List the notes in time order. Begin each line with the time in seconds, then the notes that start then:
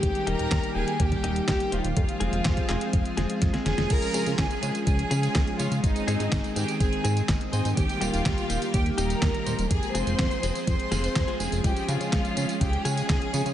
Already playing: D#3 G4 G5
0.03 D#2 G3 A#3 G4, kick, closed hi-hat
0.15 closed hi-hat
0.27 D#1 G3 A#3 D#4 G4 A#4 A#5, closed hi-hat
0.39 D#1, closed hi-hat
0.51 D#2, kick, snare, clap, closed hi-hat
0.64 closed hi-hat
0.75 D#1 G3 A#3 D#4 G4 G#4 G#5
0.88 closed hi-hat
1.00 D#2 G4 G5, kick, closed hi-hat
1.12 kick, closed hi-hat
1.24 D#1 G3 A#3 D#4 G4, closed hi-hat
1.36 closed hi-hat
1.48 D#2 G4 G5, kick, snare, clap, closed hi-hat
1.60 closed hi-hat
1.72 D#1 G3 A#3 D#4 F4 C5 F5, closed hi-hat
1.84 D#1, closed hi-hat
1.97 F2 F3 G#3 C4 G#4, kick, closed hi-hat
2.09 closed hi-hat
2.20 F1 G#3 C4 F4 G#4, closed hi-hat
2.33 F1, closed hi-hat
2.45 F2, kick, snare, clap, closed hi-hat
2.57 kick, closed hi-hat
2.69 F1 G#3 C4 F4 G#4, clap, closed hi-hat
2.81 closed hi-hat
2.93 F2, kick, closed hi-hat
3.05 closed hi-hat
3.17 F1 G#3 C4 F4 G#4, snare, closed hi-hat
3.30 closed hi-hat
3.42 F2, kick, snare, closed hi-hat
3.53 G#3 C4 F4 G#4, snare, closed hi-hat
3.65 F1 G#3 C#4 F4 G#4 G#5, snare, closed hi-hat
3.78 F1, snare, closed hi-hat
3.90 C#2 F3 G#3 C#4 G#4 A#4 A#5, kick, closed hi-hat, crash, tambourine
4.02 closed hi-hat, tambourine
4.14 C#3 G#3 C#4 F4 G#4, closed hi-hat, tambourine
4.26 C#3, closed hi-hat, tambourine
4.38 C#2 G#4 G#5, kick, snare, clap, closed hi-hat, tambourine
4.51 closed hi-hat, tambourine
4.62 C#3 G#3 C#4 F4 G#4, closed hi-hat, tambourine
4.75 closed hi-hat, tambourine
4.87 C#2 G#4 G#5, kick, closed hi-hat, tambourine
4.99 closed hi-hat
5.11 C#3 G#3 C#4 F4 G#4, closed hi-hat, tambourine
5.23 closed hi-hat, tambourine
5.35 C#2, kick, snare, clap, closed hi-hat, tambourine
5.47 closed hi-hat
5.59 C#3 G#3 C#4 F4 C#5 F5, closed hi-hat, tambourine
5.72 C#3, closed hi-hat, tambourine
5.84 G#1 D#3 C4 D#4 D#5, kick, closed hi-hat, tambourine
5.96 closed hi-hat, tambourine
6.08 G#2 G#3 C4 D#4 G#4, closed hi-hat, tambourine
6.20 G#2, closed hi-hat, tambourine
6.32 G#1, kick, snare, clap, closed hi-hat, tambourine
6.44 closed hi-hat, tambourine
6.56 G#2 G#3 C4 D#4 G4 G#4 G5, closed hi-hat, tambourine
6.68 closed hi-hat, tambourine
6.80 G#1 G#4 G#5, kick, closed hi-hat, tambourine
6.93 closed hi-hat
7.04 G#2 G#3 C4 D#4 G#4, closed hi-hat, tambourine
7.17 closed hi-hat, tambourine
7.29 G#1, kick, snare, clap, closed hi-hat, tambourine
7.41 closed hi-hat
7.53 G#2 G#3 C4 D#4 G#4 C5 G#5, closed hi-hat, tambourine
7.65 G#2, closed hi-hat, tambourine
7.77 D#2 G3 A#3 G4 G5, kick, closed hi-hat, tambourine
7.89 closed hi-hat, tambourine
8.01 D#1 G3 A#3 D#4 F4 G4 F5, closed hi-hat, tambourine
8.13 D#1, closed hi-hat, tambourine
8.26 D#2, kick, snare, clap, closed hi-hat, tambourine
8.38 closed hi-hat, tambourine
8.49 D#1 G3 A#3 D#4 G4, closed hi-hat, tambourine
8.62 closed hi-hat, tambourine
8.74 D#2 G4 G5, kick, closed hi-hat, tambourine
8.86 closed hi-hat
8.98 D#1 G3 A#3 D#4 G4 A#4 A#5, closed hi-hat, tambourine
9.10 closed hi-hat, tambourine
9.22 D#2, kick, snare, clap, closed hi-hat, tambourine
9.34 closed hi-hat
9.46 D#1 G3 A#3 D#4 C5, closed hi-hat, tambourine
9.59 D#1, closed hi-hat, tambourine
9.71 F2 F3 G#3 C4 G#4 G#5, kick, closed hi-hat, tambourine
9.83 closed hi-hat, tambourine
9.95 F1 G#3 C4 F4 G#4 C5 C6, closed hi-hat, tambourine
10.07 F1, closed hi-hat, tambourine
10.19 F2, kick, snare, clap, closed hi-hat, tambourine
10.31 closed hi-hat, tambourine
10.43 F1 G#3 C4 F4 G#4, closed hi-hat, tambourine
10.55 closed hi-hat, tambourine
10.67 F2 C5 C6, kick, closed hi-hat, tambourine
10.80 closed hi-hat
10.91 F1 G#3 C4 F4 G#4, snare, closed hi-hat, tambourine
11.04 closed hi-hat, tambourine
11.16 F2, kick, snare, clap, closed hi-hat, tambourine
11.28 G#3 C4 F4 G#4, closed hi-hat
11.40 F1 G#3 C#4 F4 G#4 G#5, closed hi-hat, tambourine
11.52 F1, closed hi-hat, tambourine
11.64 C#2 C#4 G4 G#4 G5, kick, closed hi-hat, tambourine
11.76 closed hi-hat, tambourine
11.88 C#3 G#3 C#4 F4 G#4 F5, closed hi-hat, tambourine
12.00 C#3, closed hi-hat, tambourine
12.13 C#2, kick, snare, clap, closed hi-hat, tambourine
12.25 closed hi-hat, tambourine
12.36 C#3 G#3 C#4 F4 G#4, closed hi-hat, tambourine
12.49 closed hi-hat, tambourine
12.61 C#2 G4 G5, kick, closed hi-hat, tambourine
12.73 closed hi-hat
12.85 C#3 G#3 C#4 F4 G#4 G#5, closed hi-hat, tambourine
12.97 closed hi-hat, tambourine
13.09 C#2, kick, snare, clap, closed hi-hat, tambourine
13.22 closed hi-hat
13.33 C#3 G#3 C#4 F4 C#5, closed hi-hat, tambourine
13.46 C#3, closed hi-hat, tambourine